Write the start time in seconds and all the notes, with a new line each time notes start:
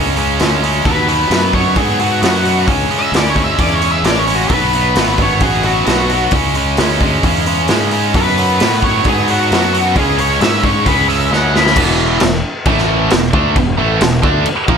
Already playing: C#2 C#3 G#3 C#4
0.17 C#3 G#3 C#4, open hi-hat
0.40 D2 C#3 G#3 C#4, snare, open hi-hat
0.64 C#3 G#3 C#4, open hi-hat
0.85 D#2 B2 F#3 B3 B4, kick, open hi-hat
1.08 B2 F#3 B3, open hi-hat
1.30 F#2 B2 F#3 B3, snare, open hi-hat
1.53 B2 F#3 B3 C#5, kick, open hi-hat
1.76 G#2 B2 F#3 B3 G#4, kick, open hi-hat
1.99 B2 F#3 B3 F#4, open hi-hat
2.22 F#2 B2 F#3 B3 F#4, snare, open hi-hat
2.44 B2 F#3 B3, open hi-hat
2.67 C#2 C#3 G#3 C#4, kick, open hi-hat
2.90 C#3 G#3 C#4, open hi-hat
2.99 E5
3.12 D2 C#3 G#3 C#4, snare, open hi-hat
3.16 D5
3.30 C#5
3.36 C#3 G#3 C#4, kick, open hi-hat
3.44 E5
3.58 E2 C#3 G#3 C#4 D5, kick, open hi-hat
3.75 C#5
3.82 C#3 G#3 C#4, open hi-hat
3.92 E5
4.03 A1 C#3 G#3 C#4 D5, snare, open hi-hat
4.19 C#5
4.27 C#3 G#3 C#4, open hi-hat
4.35 F#4
4.50 B1 B2 F#3 B3 B4, kick, open hi-hat
4.73 B2 F#3 B3, open hi-hat
4.95 G#1 B2 F#3 B3, snare, open hi-hat
5.18 B2 F#3 B3, kick, open hi-hat
5.22 C#5
5.40 A1 B2 F#3 B3 G#4, kick, open hi-hat
5.63 B2 F#3 B3 F#4, open hi-hat
5.86 B1 B2 F#3 B3 F#4, snare, open hi-hat
6.10 B2 F#3 B3, open hi-hat
6.31 C#2 C#3 G#3 C#4, kick, open hi-hat
6.55 C#3 G#3 C#4, open hi-hat
6.77 D2 C#3 G#3 C#4, snare, open hi-hat
7.00 C#3 G#3 C#4, kick, open hi-hat
7.23 E2 C#3 G#3 C#4, kick, open hi-hat
7.46 C#3 G#3 C#4, open hi-hat
7.68 G#2 C#3 G#3 C#4, snare, open hi-hat
7.91 C#3 G#3 C#4, open hi-hat
8.14 F#2 B2 F#3 B3 B4, kick, open hi-hat
8.38 B2 F#3 B3, open hi-hat
8.60 A2 B2 F#3 B3, snare, open hi-hat
8.82 B2 F#3 B3 C#5, kick, open hi-hat
9.04 G#2 B2 F#3 B3 G#4, kick, open hi-hat
9.28 B2 F#3 B3 F#4, open hi-hat
9.51 F#2 B2 F#3 B3 F#4, snare, open hi-hat
9.73 B2 F#3 B3, open hi-hat
9.96 C#2 C#3 G#3 C#4 G#4, kick, open hi-hat
10.18 C#3 G#3 C#4 C#5, open hi-hat
10.40 G#2 C#3 G#3 C#4 E5, snare, open hi-hat
10.63 C#3 G#3 C#4 C#5, kick, open hi-hat
10.86 C#2 C#3 G#3 C#4 B4, kick, open hi-hat
11.08 C#3 G#3 C#4 E5, open hi-hat
11.31 D2 C#3 G#3 C#4 F#5, snare
11.53 C#3 G#3 C#4 B5, snare
11.67 snare
11.76 E1 E2 B2 E3, kick, crash
12.20 E1 E2 B2, snare, crash
12.65 A1 A2 E3 A3, kick, crash
12.78 snare
13.10 E1 E2 B2, snare, crash
13.33 D2 D3 A3 D4, kick
13.56 E1 E2 B2, kick, crash
13.78 A1 A2 E3 A3
14.01 E1 E2 B2, snare, crash
14.22 D2 D3 A3 D4, kick
14.46 muted distorted electric guitar stroke, muted fingered electric bass stroke, crash
14.68 A#1 A#2 F3 A#3, kick